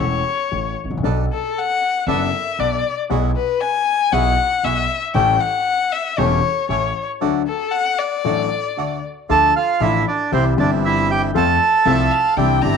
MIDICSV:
0, 0, Header, 1, 6, 480
1, 0, Start_track
1, 0, Key_signature, 2, "major"
1, 0, Tempo, 515907
1, 966, Time_signature, 4, 2, 24, 8
1, 8645, Key_signature, -1, "minor"
1, 11882, End_track
2, 0, Start_track
2, 0, Title_t, "Violin"
2, 0, Program_c, 0, 40
2, 0, Note_on_c, 0, 73, 80
2, 690, Note_off_c, 0, 73, 0
2, 1234, Note_on_c, 0, 69, 83
2, 1475, Note_on_c, 0, 78, 98
2, 1489, Note_off_c, 0, 69, 0
2, 1942, Note_off_c, 0, 78, 0
2, 1947, Note_on_c, 0, 76, 88
2, 2415, Note_on_c, 0, 74, 82
2, 2429, Note_off_c, 0, 76, 0
2, 2770, Note_off_c, 0, 74, 0
2, 3128, Note_on_c, 0, 71, 90
2, 3358, Note_on_c, 0, 80, 104
2, 3371, Note_off_c, 0, 71, 0
2, 3839, Note_on_c, 0, 78, 104
2, 3853, Note_off_c, 0, 80, 0
2, 4321, Note_on_c, 0, 76, 102
2, 4335, Note_off_c, 0, 78, 0
2, 4676, Note_off_c, 0, 76, 0
2, 4792, Note_on_c, 0, 79, 97
2, 5032, Note_on_c, 0, 78, 101
2, 5046, Note_off_c, 0, 79, 0
2, 5512, Note_on_c, 0, 76, 87
2, 5526, Note_off_c, 0, 78, 0
2, 5751, Note_on_c, 0, 73, 91
2, 5765, Note_off_c, 0, 76, 0
2, 6228, Note_off_c, 0, 73, 0
2, 6235, Note_on_c, 0, 73, 76
2, 6566, Note_off_c, 0, 73, 0
2, 6954, Note_on_c, 0, 69, 87
2, 7176, Note_on_c, 0, 78, 101
2, 7190, Note_off_c, 0, 69, 0
2, 7425, Note_on_c, 0, 74, 93
2, 7439, Note_off_c, 0, 78, 0
2, 8402, Note_off_c, 0, 74, 0
2, 11041, Note_on_c, 0, 76, 82
2, 11273, Note_on_c, 0, 77, 78
2, 11287, Note_off_c, 0, 76, 0
2, 11508, Note_on_c, 0, 79, 93
2, 11522, Note_off_c, 0, 77, 0
2, 11741, Note_on_c, 0, 82, 104
2, 11755, Note_off_c, 0, 79, 0
2, 11882, Note_off_c, 0, 82, 0
2, 11882, End_track
3, 0, Start_track
3, 0, Title_t, "Bandoneon"
3, 0, Program_c, 1, 23
3, 8660, Note_on_c, 1, 81, 107
3, 8670, Note_on_c, 1, 69, 78
3, 8877, Note_off_c, 1, 81, 0
3, 8883, Note_off_c, 1, 69, 0
3, 8896, Note_on_c, 1, 77, 92
3, 8906, Note_on_c, 1, 65, 68
3, 9121, Note_off_c, 1, 65, 0
3, 9133, Note_on_c, 1, 76, 94
3, 9139, Note_off_c, 1, 77, 0
3, 9140, Note_on_c, 1, 64, 73
3, 9355, Note_off_c, 1, 76, 0
3, 9358, Note_off_c, 1, 64, 0
3, 9377, Note_on_c, 1, 74, 86
3, 9383, Note_on_c, 1, 62, 69
3, 9596, Note_off_c, 1, 74, 0
3, 9599, Note_off_c, 1, 62, 0
3, 9614, Note_on_c, 1, 72, 89
3, 9615, Note_on_c, 1, 60, 65
3, 9720, Note_off_c, 1, 72, 0
3, 9721, Note_off_c, 1, 60, 0
3, 9857, Note_on_c, 1, 74, 85
3, 9859, Note_on_c, 1, 62, 72
3, 9962, Note_off_c, 1, 74, 0
3, 9963, Note_off_c, 1, 62, 0
3, 10096, Note_on_c, 1, 76, 97
3, 10101, Note_on_c, 1, 64, 75
3, 10315, Note_off_c, 1, 64, 0
3, 10334, Note_on_c, 1, 79, 93
3, 10335, Note_off_c, 1, 76, 0
3, 10337, Note_on_c, 1, 67, 70
3, 10439, Note_off_c, 1, 79, 0
3, 10442, Note_off_c, 1, 67, 0
3, 10576, Note_on_c, 1, 81, 97
3, 10578, Note_on_c, 1, 69, 76
3, 11485, Note_off_c, 1, 81, 0
3, 11486, Note_off_c, 1, 69, 0
3, 11882, End_track
4, 0, Start_track
4, 0, Title_t, "Bandoneon"
4, 0, Program_c, 2, 23
4, 968, Note_on_c, 2, 59, 70
4, 968, Note_on_c, 2, 62, 68
4, 971, Note_on_c, 2, 69, 78
4, 1170, Note_off_c, 2, 59, 0
4, 1170, Note_off_c, 2, 62, 0
4, 1171, Note_off_c, 2, 69, 0
4, 1930, Note_on_c, 2, 59, 75
4, 1932, Note_on_c, 2, 62, 72
4, 1936, Note_on_c, 2, 69, 81
4, 2130, Note_off_c, 2, 59, 0
4, 2131, Note_off_c, 2, 62, 0
4, 2133, Note_off_c, 2, 69, 0
4, 2402, Note_on_c, 2, 59, 52
4, 2405, Note_on_c, 2, 62, 49
4, 2408, Note_on_c, 2, 69, 57
4, 2605, Note_off_c, 2, 59, 0
4, 2607, Note_off_c, 2, 62, 0
4, 2608, Note_off_c, 2, 69, 0
4, 2883, Note_on_c, 2, 56, 72
4, 2884, Note_on_c, 2, 64, 67
4, 2887, Note_on_c, 2, 66, 84
4, 3085, Note_off_c, 2, 56, 0
4, 3085, Note_off_c, 2, 64, 0
4, 3086, Note_off_c, 2, 66, 0
4, 3840, Note_on_c, 2, 56, 80
4, 3842, Note_on_c, 2, 64, 73
4, 3842, Note_on_c, 2, 66, 90
4, 4040, Note_off_c, 2, 56, 0
4, 4041, Note_off_c, 2, 64, 0
4, 4041, Note_off_c, 2, 66, 0
4, 4315, Note_on_c, 2, 56, 53
4, 4316, Note_on_c, 2, 64, 51
4, 4319, Note_on_c, 2, 66, 60
4, 4515, Note_off_c, 2, 56, 0
4, 4516, Note_off_c, 2, 64, 0
4, 4517, Note_off_c, 2, 66, 0
4, 4785, Note_on_c, 2, 57, 84
4, 4788, Note_on_c, 2, 61, 68
4, 4790, Note_on_c, 2, 67, 90
4, 4991, Note_off_c, 2, 57, 0
4, 4992, Note_off_c, 2, 61, 0
4, 4993, Note_off_c, 2, 67, 0
4, 5750, Note_on_c, 2, 61, 76
4, 5752, Note_on_c, 2, 57, 80
4, 5755, Note_on_c, 2, 67, 92
4, 5950, Note_off_c, 2, 61, 0
4, 5951, Note_off_c, 2, 57, 0
4, 5953, Note_off_c, 2, 67, 0
4, 6226, Note_on_c, 2, 57, 54
4, 6228, Note_on_c, 2, 61, 46
4, 6233, Note_on_c, 2, 67, 59
4, 6428, Note_off_c, 2, 57, 0
4, 6430, Note_off_c, 2, 61, 0
4, 6432, Note_off_c, 2, 67, 0
4, 6703, Note_on_c, 2, 57, 78
4, 6705, Note_on_c, 2, 62, 71
4, 6708, Note_on_c, 2, 66, 88
4, 6907, Note_off_c, 2, 57, 0
4, 6908, Note_off_c, 2, 62, 0
4, 6910, Note_off_c, 2, 66, 0
4, 7671, Note_on_c, 2, 57, 75
4, 7673, Note_on_c, 2, 62, 71
4, 7675, Note_on_c, 2, 66, 81
4, 7876, Note_off_c, 2, 57, 0
4, 7877, Note_off_c, 2, 62, 0
4, 7878, Note_off_c, 2, 66, 0
4, 8162, Note_on_c, 2, 57, 50
4, 8166, Note_on_c, 2, 62, 45
4, 8166, Note_on_c, 2, 66, 54
4, 8366, Note_off_c, 2, 57, 0
4, 8368, Note_off_c, 2, 62, 0
4, 8368, Note_off_c, 2, 66, 0
4, 8642, Note_on_c, 2, 57, 80
4, 8644, Note_on_c, 2, 62, 66
4, 8645, Note_on_c, 2, 65, 91
4, 8846, Note_off_c, 2, 57, 0
4, 8847, Note_off_c, 2, 62, 0
4, 8848, Note_off_c, 2, 65, 0
4, 9122, Note_on_c, 2, 57, 76
4, 9124, Note_on_c, 2, 62, 73
4, 9124, Note_on_c, 2, 65, 85
4, 9327, Note_off_c, 2, 57, 0
4, 9328, Note_off_c, 2, 62, 0
4, 9328, Note_off_c, 2, 65, 0
4, 9605, Note_on_c, 2, 55, 78
4, 9605, Note_on_c, 2, 60, 77
4, 9605, Note_on_c, 2, 64, 89
4, 9807, Note_off_c, 2, 55, 0
4, 9807, Note_off_c, 2, 60, 0
4, 9807, Note_off_c, 2, 64, 0
4, 9838, Note_on_c, 2, 55, 85
4, 9840, Note_on_c, 2, 60, 81
4, 9842, Note_on_c, 2, 64, 96
4, 10522, Note_off_c, 2, 55, 0
4, 10523, Note_off_c, 2, 60, 0
4, 10524, Note_off_c, 2, 64, 0
4, 10557, Note_on_c, 2, 57, 85
4, 10559, Note_on_c, 2, 60, 80
4, 10559, Note_on_c, 2, 65, 93
4, 10760, Note_off_c, 2, 57, 0
4, 10761, Note_off_c, 2, 60, 0
4, 10761, Note_off_c, 2, 65, 0
4, 11034, Note_on_c, 2, 57, 82
4, 11036, Note_on_c, 2, 60, 76
4, 11036, Note_on_c, 2, 65, 90
4, 11236, Note_off_c, 2, 57, 0
4, 11237, Note_off_c, 2, 60, 0
4, 11237, Note_off_c, 2, 65, 0
4, 11516, Note_on_c, 2, 60, 80
4, 11516, Note_on_c, 2, 64, 99
4, 11517, Note_on_c, 2, 62, 73
4, 11715, Note_off_c, 2, 60, 0
4, 11716, Note_off_c, 2, 62, 0
4, 11716, Note_off_c, 2, 64, 0
4, 11756, Note_on_c, 2, 60, 84
4, 11759, Note_on_c, 2, 62, 86
4, 11760, Note_on_c, 2, 64, 105
4, 11882, Note_off_c, 2, 60, 0
4, 11882, Note_off_c, 2, 62, 0
4, 11882, Note_off_c, 2, 64, 0
4, 11882, End_track
5, 0, Start_track
5, 0, Title_t, "Grand piano"
5, 0, Program_c, 3, 0
5, 0, Note_on_c, 3, 28, 74
5, 0, Note_on_c, 3, 40, 71
5, 0, Note_on_c, 3, 52, 60
5, 0, Note_on_c, 3, 57, 57
5, 0, Note_on_c, 3, 61, 59
5, 0, Note_on_c, 3, 69, 71
5, 192, Note_off_c, 3, 52, 0
5, 192, Note_off_c, 3, 57, 0
5, 194, Note_off_c, 3, 40, 0
5, 194, Note_off_c, 3, 61, 0
5, 195, Note_off_c, 3, 28, 0
5, 196, Note_off_c, 3, 69, 0
5, 479, Note_on_c, 3, 45, 51
5, 480, Note_on_c, 3, 33, 49
5, 684, Note_off_c, 3, 33, 0
5, 684, Note_off_c, 3, 45, 0
5, 789, Note_on_c, 3, 32, 46
5, 847, Note_off_c, 3, 32, 0
5, 848, Note_on_c, 3, 33, 60
5, 906, Note_off_c, 3, 33, 0
5, 906, Note_on_c, 3, 34, 61
5, 959, Note_on_c, 3, 54, 63
5, 961, Note_on_c, 3, 35, 75
5, 961, Note_on_c, 3, 47, 77
5, 963, Note_on_c, 3, 59, 59
5, 965, Note_on_c, 3, 62, 60
5, 965, Note_on_c, 3, 69, 74
5, 966, Note_off_c, 3, 34, 0
5, 1165, Note_off_c, 3, 54, 0
5, 1166, Note_off_c, 3, 35, 0
5, 1166, Note_off_c, 3, 47, 0
5, 1167, Note_off_c, 3, 59, 0
5, 1168, Note_off_c, 3, 62, 0
5, 1168, Note_off_c, 3, 69, 0
5, 1929, Note_on_c, 3, 42, 82
5, 1933, Note_on_c, 3, 54, 65
5, 1933, Note_on_c, 3, 59, 59
5, 1933, Note_on_c, 3, 69, 70
5, 1934, Note_on_c, 3, 62, 57
5, 1935, Note_on_c, 3, 30, 80
5, 2130, Note_off_c, 3, 42, 0
5, 2131, Note_off_c, 3, 54, 0
5, 2131, Note_off_c, 3, 59, 0
5, 2132, Note_off_c, 3, 62, 0
5, 2132, Note_off_c, 3, 69, 0
5, 2133, Note_off_c, 3, 30, 0
5, 2413, Note_on_c, 3, 35, 51
5, 2416, Note_on_c, 3, 47, 51
5, 2611, Note_off_c, 3, 35, 0
5, 2613, Note_off_c, 3, 47, 0
5, 2881, Note_on_c, 3, 59, 65
5, 2882, Note_on_c, 3, 47, 82
5, 2882, Note_on_c, 3, 54, 74
5, 2883, Note_on_c, 3, 35, 81
5, 2883, Note_on_c, 3, 64, 69
5, 2884, Note_on_c, 3, 68, 76
5, 3083, Note_off_c, 3, 59, 0
5, 3084, Note_off_c, 3, 47, 0
5, 3084, Note_off_c, 3, 54, 0
5, 3085, Note_off_c, 3, 35, 0
5, 3085, Note_off_c, 3, 64, 0
5, 3085, Note_off_c, 3, 68, 0
5, 3833, Note_on_c, 3, 35, 75
5, 3833, Note_on_c, 3, 54, 66
5, 3835, Note_on_c, 3, 47, 82
5, 3835, Note_on_c, 3, 59, 66
5, 3837, Note_on_c, 3, 64, 64
5, 3839, Note_on_c, 3, 68, 75
5, 4037, Note_off_c, 3, 35, 0
5, 4037, Note_off_c, 3, 54, 0
5, 4038, Note_off_c, 3, 47, 0
5, 4038, Note_off_c, 3, 59, 0
5, 4039, Note_off_c, 3, 64, 0
5, 4040, Note_off_c, 3, 68, 0
5, 4314, Note_on_c, 3, 47, 55
5, 4315, Note_on_c, 3, 35, 53
5, 4515, Note_off_c, 3, 35, 0
5, 4515, Note_off_c, 3, 47, 0
5, 4788, Note_on_c, 3, 61, 66
5, 4789, Note_on_c, 3, 55, 74
5, 4791, Note_on_c, 3, 33, 94
5, 4793, Note_on_c, 3, 45, 83
5, 4793, Note_on_c, 3, 69, 84
5, 4795, Note_on_c, 3, 64, 65
5, 4992, Note_off_c, 3, 61, 0
5, 4993, Note_off_c, 3, 33, 0
5, 4993, Note_off_c, 3, 55, 0
5, 4995, Note_off_c, 3, 45, 0
5, 4995, Note_off_c, 3, 69, 0
5, 4996, Note_off_c, 3, 64, 0
5, 5749, Note_on_c, 3, 28, 78
5, 5750, Note_on_c, 3, 55, 70
5, 5750, Note_on_c, 3, 64, 67
5, 5751, Note_on_c, 3, 40, 85
5, 5751, Note_on_c, 3, 61, 66
5, 5755, Note_on_c, 3, 69, 77
5, 5950, Note_off_c, 3, 28, 0
5, 5950, Note_off_c, 3, 55, 0
5, 5950, Note_off_c, 3, 64, 0
5, 5951, Note_off_c, 3, 40, 0
5, 5951, Note_off_c, 3, 61, 0
5, 5953, Note_off_c, 3, 69, 0
5, 6224, Note_on_c, 3, 45, 51
5, 6227, Note_on_c, 3, 33, 55
5, 6427, Note_off_c, 3, 45, 0
5, 6429, Note_off_c, 3, 33, 0
5, 6708, Note_on_c, 3, 54, 74
5, 6710, Note_on_c, 3, 57, 67
5, 6712, Note_on_c, 3, 50, 88
5, 6713, Note_on_c, 3, 38, 84
5, 6714, Note_on_c, 3, 62, 69
5, 6720, Note_on_c, 3, 69, 83
5, 6910, Note_off_c, 3, 54, 0
5, 6911, Note_off_c, 3, 57, 0
5, 6912, Note_off_c, 3, 38, 0
5, 6912, Note_off_c, 3, 50, 0
5, 6913, Note_off_c, 3, 62, 0
5, 6916, Note_off_c, 3, 69, 0
5, 7669, Note_on_c, 3, 54, 66
5, 7670, Note_on_c, 3, 57, 60
5, 7672, Note_on_c, 3, 45, 77
5, 7673, Note_on_c, 3, 33, 77
5, 7673, Note_on_c, 3, 62, 56
5, 7675, Note_on_c, 3, 69, 77
5, 7875, Note_off_c, 3, 54, 0
5, 7875, Note_off_c, 3, 57, 0
5, 7876, Note_off_c, 3, 45, 0
5, 7877, Note_off_c, 3, 33, 0
5, 7877, Note_off_c, 3, 62, 0
5, 7878, Note_off_c, 3, 69, 0
5, 8157, Note_on_c, 3, 38, 49
5, 8161, Note_on_c, 3, 50, 50
5, 8364, Note_off_c, 3, 38, 0
5, 8365, Note_off_c, 3, 50, 0
5, 8644, Note_on_c, 3, 53, 73
5, 8645, Note_on_c, 3, 57, 65
5, 8648, Note_on_c, 3, 62, 67
5, 8649, Note_on_c, 3, 38, 89
5, 8649, Note_on_c, 3, 50, 86
5, 8653, Note_on_c, 3, 69, 80
5, 8847, Note_off_c, 3, 53, 0
5, 8847, Note_off_c, 3, 57, 0
5, 8849, Note_off_c, 3, 38, 0
5, 8849, Note_off_c, 3, 50, 0
5, 8849, Note_off_c, 3, 62, 0
5, 8851, Note_off_c, 3, 69, 0
5, 9119, Note_on_c, 3, 53, 70
5, 9123, Note_on_c, 3, 33, 85
5, 9125, Note_on_c, 3, 45, 85
5, 9125, Note_on_c, 3, 57, 67
5, 9125, Note_on_c, 3, 62, 66
5, 9125, Note_on_c, 3, 69, 85
5, 9326, Note_off_c, 3, 53, 0
5, 9328, Note_off_c, 3, 33, 0
5, 9329, Note_off_c, 3, 45, 0
5, 9329, Note_off_c, 3, 57, 0
5, 9329, Note_off_c, 3, 62, 0
5, 9329, Note_off_c, 3, 69, 0
5, 9601, Note_on_c, 3, 36, 87
5, 9603, Note_on_c, 3, 48, 76
5, 9603, Note_on_c, 3, 52, 67
5, 9604, Note_on_c, 3, 55, 65
5, 9606, Note_on_c, 3, 60, 61
5, 9608, Note_on_c, 3, 67, 80
5, 9805, Note_off_c, 3, 36, 0
5, 9806, Note_off_c, 3, 48, 0
5, 9806, Note_off_c, 3, 52, 0
5, 9807, Note_off_c, 3, 55, 0
5, 9807, Note_off_c, 3, 60, 0
5, 9808, Note_off_c, 3, 67, 0
5, 9822, Note_on_c, 3, 52, 71
5, 9830, Note_on_c, 3, 55, 67
5, 9838, Note_on_c, 3, 31, 86
5, 9839, Note_on_c, 3, 43, 81
5, 9843, Note_on_c, 3, 60, 66
5, 9857, Note_on_c, 3, 67, 79
5, 10513, Note_off_c, 3, 52, 0
5, 10518, Note_off_c, 3, 55, 0
5, 10522, Note_off_c, 3, 31, 0
5, 10522, Note_off_c, 3, 43, 0
5, 10524, Note_off_c, 3, 60, 0
5, 10531, Note_off_c, 3, 67, 0
5, 10551, Note_on_c, 3, 53, 85
5, 10554, Note_on_c, 3, 41, 85
5, 10554, Note_on_c, 3, 57, 70
5, 10556, Note_on_c, 3, 60, 70
5, 10558, Note_on_c, 3, 69, 86
5, 10758, Note_off_c, 3, 41, 0
5, 10758, Note_off_c, 3, 53, 0
5, 10759, Note_off_c, 3, 57, 0
5, 10760, Note_off_c, 3, 60, 0
5, 10761, Note_off_c, 3, 69, 0
5, 11030, Note_on_c, 3, 48, 90
5, 11030, Note_on_c, 3, 53, 78
5, 11034, Note_on_c, 3, 60, 70
5, 11035, Note_on_c, 3, 57, 71
5, 11036, Note_on_c, 3, 36, 87
5, 11036, Note_on_c, 3, 69, 83
5, 11234, Note_off_c, 3, 48, 0
5, 11234, Note_off_c, 3, 53, 0
5, 11236, Note_off_c, 3, 60, 0
5, 11237, Note_off_c, 3, 36, 0
5, 11237, Note_off_c, 3, 57, 0
5, 11237, Note_off_c, 3, 69, 0
5, 11504, Note_on_c, 3, 52, 74
5, 11509, Note_on_c, 3, 62, 66
5, 11510, Note_on_c, 3, 36, 88
5, 11510, Note_on_c, 3, 60, 68
5, 11511, Note_on_c, 3, 67, 77
5, 11513, Note_on_c, 3, 48, 84
5, 11709, Note_off_c, 3, 52, 0
5, 11712, Note_off_c, 3, 60, 0
5, 11712, Note_off_c, 3, 62, 0
5, 11713, Note_off_c, 3, 36, 0
5, 11713, Note_off_c, 3, 67, 0
5, 11714, Note_off_c, 3, 48, 0
5, 11723, Note_on_c, 3, 52, 71
5, 11737, Note_on_c, 3, 60, 65
5, 11742, Note_on_c, 3, 31, 79
5, 11743, Note_on_c, 3, 43, 84
5, 11746, Note_on_c, 3, 62, 63
5, 11763, Note_on_c, 3, 67, 75
5, 11882, Note_off_c, 3, 31, 0
5, 11882, Note_off_c, 3, 43, 0
5, 11882, Note_off_c, 3, 52, 0
5, 11882, Note_off_c, 3, 60, 0
5, 11882, Note_off_c, 3, 62, 0
5, 11882, Note_off_c, 3, 67, 0
5, 11882, End_track
6, 0, Start_track
6, 0, Title_t, "Upright bass"
6, 0, Program_c, 4, 32
6, 0, Note_on_c, 4, 28, 79
6, 197, Note_off_c, 4, 28, 0
6, 485, Note_on_c, 4, 33, 56
6, 687, Note_off_c, 4, 33, 0
6, 784, Note_on_c, 4, 32, 50
6, 836, Note_off_c, 4, 32, 0
6, 842, Note_on_c, 4, 33, 65
6, 901, Note_off_c, 4, 33, 0
6, 906, Note_on_c, 4, 34, 73
6, 964, Note_off_c, 4, 34, 0
6, 970, Note_on_c, 4, 35, 85
6, 1171, Note_off_c, 4, 35, 0
6, 1923, Note_on_c, 4, 30, 81
6, 2127, Note_off_c, 4, 30, 0
6, 2407, Note_on_c, 4, 35, 59
6, 2608, Note_off_c, 4, 35, 0
6, 2889, Note_on_c, 4, 35, 88
6, 3087, Note_off_c, 4, 35, 0
6, 3840, Note_on_c, 4, 35, 92
6, 4040, Note_off_c, 4, 35, 0
6, 4311, Note_on_c, 4, 35, 61
6, 4513, Note_off_c, 4, 35, 0
6, 4787, Note_on_c, 4, 33, 96
6, 4992, Note_off_c, 4, 33, 0
6, 5751, Note_on_c, 4, 28, 96
6, 5951, Note_off_c, 4, 28, 0
6, 6224, Note_on_c, 4, 33, 66
6, 6427, Note_off_c, 4, 33, 0
6, 8650, Note_on_c, 4, 38, 92
6, 8850, Note_off_c, 4, 38, 0
6, 9121, Note_on_c, 4, 33, 93
6, 9327, Note_off_c, 4, 33, 0
6, 9605, Note_on_c, 4, 36, 99
6, 9807, Note_off_c, 4, 36, 0
6, 9843, Note_on_c, 4, 31, 90
6, 10524, Note_off_c, 4, 31, 0
6, 10565, Note_on_c, 4, 41, 95
6, 10764, Note_off_c, 4, 41, 0
6, 11029, Note_on_c, 4, 36, 99
6, 11234, Note_off_c, 4, 36, 0
6, 11511, Note_on_c, 4, 36, 99
6, 11713, Note_off_c, 4, 36, 0
6, 11749, Note_on_c, 4, 31, 100
6, 11882, Note_off_c, 4, 31, 0
6, 11882, End_track
0, 0, End_of_file